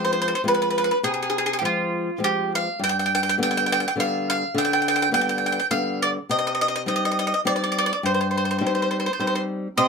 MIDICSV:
0, 0, Header, 1, 4, 480
1, 0, Start_track
1, 0, Key_signature, -3, "minor"
1, 0, Tempo, 583090
1, 852, Time_signature, 3, 2, 24, 8
1, 8134, End_track
2, 0, Start_track
2, 0, Title_t, "Mandolin"
2, 0, Program_c, 0, 25
2, 38, Note_on_c, 0, 72, 66
2, 94, Note_off_c, 0, 72, 0
2, 104, Note_on_c, 0, 72, 58
2, 163, Note_off_c, 0, 72, 0
2, 178, Note_on_c, 0, 72, 69
2, 220, Note_off_c, 0, 72, 0
2, 230, Note_on_c, 0, 72, 61
2, 280, Note_off_c, 0, 72, 0
2, 289, Note_on_c, 0, 72, 63
2, 339, Note_off_c, 0, 72, 0
2, 395, Note_on_c, 0, 71, 74
2, 438, Note_off_c, 0, 71, 0
2, 448, Note_on_c, 0, 71, 62
2, 499, Note_off_c, 0, 71, 0
2, 509, Note_on_c, 0, 71, 67
2, 567, Note_off_c, 0, 71, 0
2, 580, Note_on_c, 0, 71, 61
2, 631, Note_off_c, 0, 71, 0
2, 641, Note_on_c, 0, 71, 74
2, 684, Note_off_c, 0, 71, 0
2, 694, Note_on_c, 0, 71, 67
2, 741, Note_off_c, 0, 71, 0
2, 751, Note_on_c, 0, 71, 65
2, 804, Note_off_c, 0, 71, 0
2, 858, Note_on_c, 0, 68, 87
2, 916, Note_off_c, 0, 68, 0
2, 936, Note_on_c, 0, 68, 54
2, 989, Note_off_c, 0, 68, 0
2, 1009, Note_on_c, 0, 68, 56
2, 1058, Note_off_c, 0, 68, 0
2, 1068, Note_on_c, 0, 68, 64
2, 1120, Note_off_c, 0, 68, 0
2, 1138, Note_on_c, 0, 68, 75
2, 1181, Note_off_c, 0, 68, 0
2, 1203, Note_on_c, 0, 68, 66
2, 1243, Note_off_c, 0, 68, 0
2, 1262, Note_on_c, 0, 68, 67
2, 1301, Note_off_c, 0, 68, 0
2, 1307, Note_on_c, 0, 67, 59
2, 1347, Note_off_c, 0, 67, 0
2, 1360, Note_on_c, 0, 65, 66
2, 1796, Note_off_c, 0, 65, 0
2, 1845, Note_on_c, 0, 67, 84
2, 2071, Note_off_c, 0, 67, 0
2, 2102, Note_on_c, 0, 77, 87
2, 2299, Note_off_c, 0, 77, 0
2, 2335, Note_on_c, 0, 79, 81
2, 2372, Note_off_c, 0, 79, 0
2, 2382, Note_on_c, 0, 79, 71
2, 2436, Note_off_c, 0, 79, 0
2, 2465, Note_on_c, 0, 79, 57
2, 2507, Note_off_c, 0, 79, 0
2, 2517, Note_on_c, 0, 79, 54
2, 2569, Note_off_c, 0, 79, 0
2, 2591, Note_on_c, 0, 79, 79
2, 2632, Note_off_c, 0, 79, 0
2, 2659, Note_on_c, 0, 79, 60
2, 2696, Note_off_c, 0, 79, 0
2, 2712, Note_on_c, 0, 79, 78
2, 2751, Note_off_c, 0, 79, 0
2, 2821, Note_on_c, 0, 79, 86
2, 2864, Note_off_c, 0, 79, 0
2, 2888, Note_on_c, 0, 79, 58
2, 2931, Note_off_c, 0, 79, 0
2, 2942, Note_on_c, 0, 79, 65
2, 2990, Note_off_c, 0, 79, 0
2, 3016, Note_on_c, 0, 79, 62
2, 3056, Note_off_c, 0, 79, 0
2, 3066, Note_on_c, 0, 79, 82
2, 3110, Note_off_c, 0, 79, 0
2, 3130, Note_on_c, 0, 79, 57
2, 3171, Note_off_c, 0, 79, 0
2, 3192, Note_on_c, 0, 79, 67
2, 3232, Note_off_c, 0, 79, 0
2, 3293, Note_on_c, 0, 77, 83
2, 3516, Note_off_c, 0, 77, 0
2, 3538, Note_on_c, 0, 77, 98
2, 3759, Note_off_c, 0, 77, 0
2, 3772, Note_on_c, 0, 79, 84
2, 3816, Note_off_c, 0, 79, 0
2, 3826, Note_on_c, 0, 79, 60
2, 3879, Note_off_c, 0, 79, 0
2, 3896, Note_on_c, 0, 79, 75
2, 3947, Note_off_c, 0, 79, 0
2, 3967, Note_on_c, 0, 79, 52
2, 4009, Note_off_c, 0, 79, 0
2, 4019, Note_on_c, 0, 79, 86
2, 4066, Note_off_c, 0, 79, 0
2, 4081, Note_on_c, 0, 79, 66
2, 4126, Note_off_c, 0, 79, 0
2, 4135, Note_on_c, 0, 79, 72
2, 4182, Note_off_c, 0, 79, 0
2, 4232, Note_on_c, 0, 79, 88
2, 4282, Note_off_c, 0, 79, 0
2, 4292, Note_on_c, 0, 79, 61
2, 4347, Note_off_c, 0, 79, 0
2, 4357, Note_on_c, 0, 79, 59
2, 4415, Note_off_c, 0, 79, 0
2, 4429, Note_on_c, 0, 79, 54
2, 4483, Note_off_c, 0, 79, 0
2, 4496, Note_on_c, 0, 79, 67
2, 4537, Note_off_c, 0, 79, 0
2, 4547, Note_on_c, 0, 79, 54
2, 4597, Note_off_c, 0, 79, 0
2, 4606, Note_on_c, 0, 79, 59
2, 4656, Note_off_c, 0, 79, 0
2, 4700, Note_on_c, 0, 77, 83
2, 4935, Note_off_c, 0, 77, 0
2, 4960, Note_on_c, 0, 74, 84
2, 5019, Note_off_c, 0, 74, 0
2, 5193, Note_on_c, 0, 75, 71
2, 5246, Note_off_c, 0, 75, 0
2, 5257, Note_on_c, 0, 75, 55
2, 5311, Note_off_c, 0, 75, 0
2, 5326, Note_on_c, 0, 75, 62
2, 5378, Note_off_c, 0, 75, 0
2, 5389, Note_on_c, 0, 75, 54
2, 5434, Note_off_c, 0, 75, 0
2, 5444, Note_on_c, 0, 75, 80
2, 5492, Note_off_c, 0, 75, 0
2, 5501, Note_on_c, 0, 75, 62
2, 5551, Note_off_c, 0, 75, 0
2, 5562, Note_on_c, 0, 75, 70
2, 5610, Note_off_c, 0, 75, 0
2, 5665, Note_on_c, 0, 75, 72
2, 5718, Note_off_c, 0, 75, 0
2, 5728, Note_on_c, 0, 75, 61
2, 5790, Note_off_c, 0, 75, 0
2, 5805, Note_on_c, 0, 75, 61
2, 5848, Note_off_c, 0, 75, 0
2, 5857, Note_on_c, 0, 75, 55
2, 5909, Note_off_c, 0, 75, 0
2, 5919, Note_on_c, 0, 75, 67
2, 5974, Note_off_c, 0, 75, 0
2, 5985, Note_on_c, 0, 75, 61
2, 6031, Note_off_c, 0, 75, 0
2, 6041, Note_on_c, 0, 75, 55
2, 6093, Note_off_c, 0, 75, 0
2, 6148, Note_on_c, 0, 74, 80
2, 6199, Note_off_c, 0, 74, 0
2, 6222, Note_on_c, 0, 74, 56
2, 6269, Note_off_c, 0, 74, 0
2, 6286, Note_on_c, 0, 74, 63
2, 6334, Note_off_c, 0, 74, 0
2, 6353, Note_on_c, 0, 74, 61
2, 6399, Note_off_c, 0, 74, 0
2, 6408, Note_on_c, 0, 74, 77
2, 6452, Note_off_c, 0, 74, 0
2, 6472, Note_on_c, 0, 74, 64
2, 6513, Note_off_c, 0, 74, 0
2, 6526, Note_on_c, 0, 74, 60
2, 6569, Note_off_c, 0, 74, 0
2, 6632, Note_on_c, 0, 72, 68
2, 6681, Note_off_c, 0, 72, 0
2, 6705, Note_on_c, 0, 72, 47
2, 6746, Note_off_c, 0, 72, 0
2, 6756, Note_on_c, 0, 72, 47
2, 6808, Note_off_c, 0, 72, 0
2, 6840, Note_on_c, 0, 72, 40
2, 6883, Note_off_c, 0, 72, 0
2, 6894, Note_on_c, 0, 72, 53
2, 6936, Note_off_c, 0, 72, 0
2, 6958, Note_on_c, 0, 72, 43
2, 6994, Note_off_c, 0, 72, 0
2, 7004, Note_on_c, 0, 72, 51
2, 7049, Note_off_c, 0, 72, 0
2, 7067, Note_on_c, 0, 72, 37
2, 7111, Note_off_c, 0, 72, 0
2, 7133, Note_on_c, 0, 72, 49
2, 7181, Note_off_c, 0, 72, 0
2, 7202, Note_on_c, 0, 72, 43
2, 7248, Note_off_c, 0, 72, 0
2, 7263, Note_on_c, 0, 72, 46
2, 7312, Note_off_c, 0, 72, 0
2, 7333, Note_on_c, 0, 72, 42
2, 7378, Note_off_c, 0, 72, 0
2, 7407, Note_on_c, 0, 72, 55
2, 7442, Note_off_c, 0, 72, 0
2, 7461, Note_on_c, 0, 72, 45
2, 7498, Note_off_c, 0, 72, 0
2, 7517, Note_on_c, 0, 72, 50
2, 7555, Note_off_c, 0, 72, 0
2, 7576, Note_on_c, 0, 72, 43
2, 7618, Note_off_c, 0, 72, 0
2, 7634, Note_on_c, 0, 72, 49
2, 7682, Note_off_c, 0, 72, 0
2, 7701, Note_on_c, 0, 72, 49
2, 7749, Note_off_c, 0, 72, 0
2, 8047, Note_on_c, 0, 75, 90
2, 8134, Note_off_c, 0, 75, 0
2, 8134, End_track
3, 0, Start_track
3, 0, Title_t, "Accordion"
3, 0, Program_c, 1, 21
3, 8050, Note_on_c, 1, 60, 76
3, 8134, Note_off_c, 1, 60, 0
3, 8134, End_track
4, 0, Start_track
4, 0, Title_t, "Nylon-string guitar"
4, 0, Program_c, 2, 24
4, 0, Note_on_c, 2, 53, 41
4, 0, Note_on_c, 2, 56, 39
4, 0, Note_on_c, 2, 60, 50
4, 270, Note_off_c, 2, 53, 0
4, 272, Note_off_c, 2, 56, 0
4, 276, Note_off_c, 2, 60, 0
4, 361, Note_on_c, 2, 53, 43
4, 361, Note_on_c, 2, 56, 34
4, 370, Note_on_c, 2, 60, 44
4, 749, Note_off_c, 2, 56, 0
4, 750, Note_off_c, 2, 53, 0
4, 755, Note_off_c, 2, 60, 0
4, 851, Note_on_c, 2, 48, 58
4, 1318, Note_off_c, 2, 48, 0
4, 1330, Note_on_c, 2, 53, 41
4, 1334, Note_on_c, 2, 56, 36
4, 1338, Note_on_c, 2, 60, 43
4, 1718, Note_off_c, 2, 53, 0
4, 1718, Note_off_c, 2, 56, 0
4, 1722, Note_off_c, 2, 60, 0
4, 1797, Note_on_c, 2, 53, 30
4, 1809, Note_on_c, 2, 56, 30
4, 1811, Note_on_c, 2, 60, 40
4, 2191, Note_off_c, 2, 53, 0
4, 2198, Note_off_c, 2, 60, 0
4, 2200, Note_off_c, 2, 56, 0
4, 2300, Note_on_c, 2, 43, 57
4, 2768, Note_off_c, 2, 43, 0
4, 2781, Note_on_c, 2, 50, 43
4, 2785, Note_on_c, 2, 55, 40
4, 2788, Note_on_c, 2, 59, 41
4, 3168, Note_off_c, 2, 50, 0
4, 3168, Note_off_c, 2, 55, 0
4, 3168, Note_off_c, 2, 59, 0
4, 3257, Note_on_c, 2, 50, 41
4, 3265, Note_on_c, 2, 55, 34
4, 3266, Note_on_c, 2, 59, 37
4, 3643, Note_off_c, 2, 50, 0
4, 3647, Note_off_c, 2, 59, 0
4, 3649, Note_off_c, 2, 55, 0
4, 3741, Note_on_c, 2, 50, 56
4, 4200, Note_off_c, 2, 50, 0
4, 4210, Note_on_c, 2, 50, 42
4, 4213, Note_on_c, 2, 55, 38
4, 4216, Note_on_c, 2, 59, 48
4, 4596, Note_off_c, 2, 50, 0
4, 4597, Note_off_c, 2, 55, 0
4, 4600, Note_off_c, 2, 59, 0
4, 4698, Note_on_c, 2, 50, 38
4, 4700, Note_on_c, 2, 55, 39
4, 4701, Note_on_c, 2, 59, 41
4, 5081, Note_off_c, 2, 50, 0
4, 5081, Note_off_c, 2, 55, 0
4, 5081, Note_off_c, 2, 59, 0
4, 5181, Note_on_c, 2, 48, 50
4, 5641, Note_off_c, 2, 48, 0
4, 5648, Note_on_c, 2, 55, 44
4, 5653, Note_on_c, 2, 60, 46
4, 5658, Note_on_c, 2, 63, 51
4, 6030, Note_off_c, 2, 55, 0
4, 6033, Note_off_c, 2, 60, 0
4, 6036, Note_off_c, 2, 63, 0
4, 6131, Note_on_c, 2, 55, 41
4, 6136, Note_on_c, 2, 60, 38
4, 6136, Note_on_c, 2, 63, 39
4, 6512, Note_off_c, 2, 55, 0
4, 6515, Note_off_c, 2, 60, 0
4, 6515, Note_off_c, 2, 63, 0
4, 6612, Note_on_c, 2, 43, 54
4, 7076, Note_off_c, 2, 43, 0
4, 7084, Note_on_c, 2, 55, 35
4, 7089, Note_on_c, 2, 63, 42
4, 7090, Note_on_c, 2, 60, 39
4, 7474, Note_off_c, 2, 55, 0
4, 7476, Note_off_c, 2, 63, 0
4, 7477, Note_off_c, 2, 60, 0
4, 7568, Note_on_c, 2, 55, 42
4, 7570, Note_on_c, 2, 60, 33
4, 7576, Note_on_c, 2, 63, 42
4, 7958, Note_off_c, 2, 55, 0
4, 7958, Note_off_c, 2, 60, 0
4, 7963, Note_off_c, 2, 63, 0
4, 8048, Note_on_c, 2, 48, 57
4, 8134, Note_off_c, 2, 48, 0
4, 8134, End_track
0, 0, End_of_file